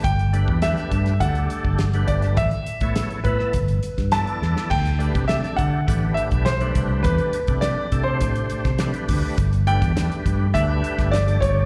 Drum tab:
CC |----------------|----------------|x---------------|----------------|
HH |xxx-xxxxxxx-xxxx|xxxxxxx-xxxxxx--|-xxxxxx-x-xxxxx-|xxxxx-x-xxxxxxo-|
SD |----oo-o----o--o|----o--o---oo-oo|-o--oo------o---|----o------oo---|
BD |o--o--o-o--o--o-|o--o--o-o--o----|o--o--o-o--o--o-|o--o--o-o--o--o-|

CC |----------------|
HH |xxxxxxx-x-xxxxx-|
SD |---oo------oo---|
BD |o--o--o-o--o--o-|